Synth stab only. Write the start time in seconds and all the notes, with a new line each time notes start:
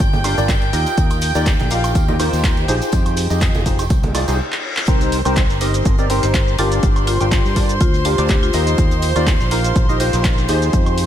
0.25 D4 F4 G4 A#4 F5
0.38 D4 F4 G4 A#4 D5
0.73 D#4 F4 G4 A#4 D#5
1.35 D#4 F4 G4 A#4 D5
1.71 D#4 F4 G4 A#4 F5
2.08 D#4 F4 G4 A#4 D#5
2.19 D#4 F4 G4 A#4 C5
2.68 D#4 F4 G4 G#4 C5
3.30 D#4 F4 G4 G#4 D#5
3.66 D#4 F4 G4 G#4 C5
4.15 D#4 F4 G4 G#4 D5
4.28 D#4 F4 G4 G#4 C5
4.88 C4 D#4 G4 A#4 C5
5.26 C4 D#4 G4 A#4 C5
5.61 C4 D#4 G4 A#4 D#5
5.99 C4 D#4 G4 A#4 D5
6.10 C4 D#4 G4 A#4 C5
6.59 D4 F4 G4 A#4 D5
7.21 D4 F4 G4 A#4 G5
7.56 D4 F4 G4 A#4 D5
8.05 D4 F4 G4 A#4 F5
8.18 D4 F4 G4 A#4 D5
8.54 D#4 F4 G4 A#4 D#5
9.16 D#4 F4 G4 A#4 D5
9.51 D#4 F4 G4 A#4 F5
9.89 D#4 F4 G4 A#4 D#5
10.00 D#4 F4 G4 A#4 C5
10.49 D#4 F4 G4 G#4 C5